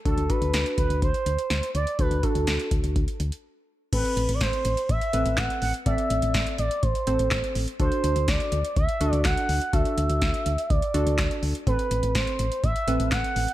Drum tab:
CC |----------------|----------------|x---------------|----------------|
HH |xxxxxxxxxxxxxxxx|xxxxxxxxxxxx----|xxxxxxxxxxxxxxox|xxxxxxxxxxxxxxox|
CP |----------------|----------------|------------x---|------------x---|
SD |----o-------o---|----o-----------|----o-------o---|----o-------o---|
BD |o-o---o-o-------|o-o---o-o-------|o---o---o---o---|o---o---o---o---|

CC |----------------|----------------|----------------|
HH |xxxxxxxxxxxxxxox|xxxxxxxxxxxxxxox|xxxxxxxxxxxxxxox|
CP |------------x---|------------x---|------------x---|
SD |----o-------o---|----o-------o---|----o-------o---|
BD |o---o---o---o---|o---o---o---o---|o---o---o---o---|